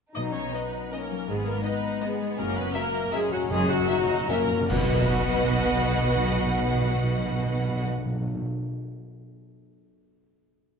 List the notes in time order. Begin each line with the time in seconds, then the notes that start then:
0.14 B1 B2 D#4 D#5
0.32 F#3 C#4 C#5
0.52 B3 D#4 B4 D#5
0.74 D#5
0.92 A#3 C#4 D#4 A#4 D#5
1.11 F#3
1.28 G#1 G#2 G#3 B3 G#4
1.45 G#3 A#3 A#4
1.64 B3 D#4 B4 D#5
1.84 D#5
2.01 G#3 B3 D#4 G#4 D#5
2.21 G#3
2.38 F#1 F#2 A#3 C#4 A#4
2.45 F#2
2.53 F#2 B3 C#4 B4
2.60 F#2
2.67 F#2
2.74 F#2 A#3 F#4 A#4 E5
2.83 F#2
2.91 F#2 E5
2.99 F#2
3.06 F#2
3.13 F#2 G#3 C#4 F#4 G#4 E5
3.21 F#2
3.29 F#2 F#3 C#4 F#4
3.36 F#2
3.43 F#2
3.50 F#1 F#2 G#3 G#4
3.57 F#2
3.63 F#2
3.68 F#2 C#3 F#3 F#4
3.79 F#2
3.88 F#2 D#4 F#4 E5
3.96 F#2
4.04 F#2
4.08 E5
4.12 F#2
4.20 F#2
4.28 F#2 A#3 C#4 F#4 A#4 E5
4.37 F#2
4.45 F#2
4.50 F#2 C#4
4.61 F#2
4.69 B1 B2 B3 F#4 B4 D#5 F#5, concert bass drum, crash
4.76 B2 B3
4.84 B2 F#4
4.90 B2 D#5
4.98 B2 F#5
5.06 B2
5.14 B2
5.21 B2
5.29 B2
5.36 B2
5.44 B2
5.51 B2
5.59 B2
5.66 B2
5.73 B2
5.81 B2
5.88 B2
5.95 B2
6.03 B2
6.10 B2
6.17 B2
6.24 B2
6.31 B2
6.38 B2
6.46 B2
6.53 B2
6.61 B2
6.67 B2
6.74 B2
6.81 B2
6.89 B2
6.96 B2
7.03 B2
7.10 B2
7.17 B2
7.24 B2
7.31 B2
7.38 B2
7.46 B2
7.54 B2
7.61 B2
7.69 B2
7.76 B2
7.83 B2
7.90 B2
7.98 B2
8.05 B2
8.13 B2
8.20 B2
8.27 B2
8.34 B2
8.42 B2